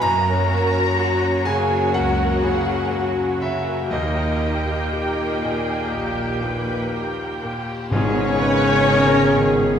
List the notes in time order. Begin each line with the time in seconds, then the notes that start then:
0.02 F#2 F#3 A#3 F#4 A#4 C#5 A#5
0.28 C#4
0.50 C#4 F#4
0.74 A#4
0.98 F#4
1.22 C#4
1.45 C#3 A#3 G#4 G#5
1.70 C#4
1.94 C#2 C#4 F#4 A#4 F#5
2.19 A#4
2.43 C#3 F#4 G#4
2.67 C#4
2.92 A#3 F#4
3.15 C#4
3.41 C#3 F#4 E5
3.65 A#4
3.91 D#2 A#2 D#3 A#3 D#4 G4 D#5 G5
4.16 D#4
4.41 D#4 G4
4.66 A#4
4.92 G4 A#4
5.42 A#2 G#4
5.92 A#1 D#4 G4
6.42 A#2 B4
6.93 G4 A#4
7.43 A#2 G4
7.90 G#1 G#2 C#3 B3 C#4 G#4 C#5, tam-tam
8.40 D#4 B4
8.88 G#4 A#4
9.36 D#3 G#4